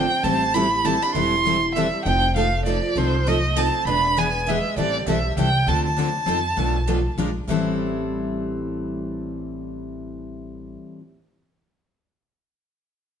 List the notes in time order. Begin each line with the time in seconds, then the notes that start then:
Already playing: C4 G5
0.23 A1 E3 G3 C4 E4 A4 A5
0.54 E3 G3 C4 E4 A4 B5
0.85 E3 G3 C4 E4 A4 A5
1.02 D4 B5
1.15 E1 E3 G3 C4 E4 A4 C6
1.46 E3 G3 C4 E4 A4
1.75 E3 G3 C4 E4 A4 E5
2.06 F1 F3 C4 D#4 A4 G5
2.36 F3 A3 C4 D#4 A4 F5
2.66 F3 C4 D#4 A4 D5
2.95 C2 D#3 F3 C4 D#4 A4 C5
3.27 F3 A3 C4 D#4 A4 D#5
3.57 F3 C4 D#4 A4 A5
3.85 E1 E3 B3 D4 G#4 B4 B5
4.17 E3 B3 D4 G#4 B4 G#5
4.46 E3 G#3 B3 D4 G#4 B4 E5
4.76 A1 E3 G3 C4 E4 A4 D5
5.07 B1 E3 G3 C4 E4 A4 E5
5.37 C2 E3 G3 C4 E4 A4 G5
5.67 D2 D3 F3 C4 D4 A4 A5
5.85 A5
5.99 D3 F3 C4 D4 A4
6.26 F2 F3 C4 D#4 A4
6.57 B1 B2 F3 A3 D4 A4 B4
6.87 B2 F3 A3 D4 A4 B4
7.18 A#1 F3 G#3 D4 F4 A#4
7.47 A1 A2 E3 G3 C4 E4 A4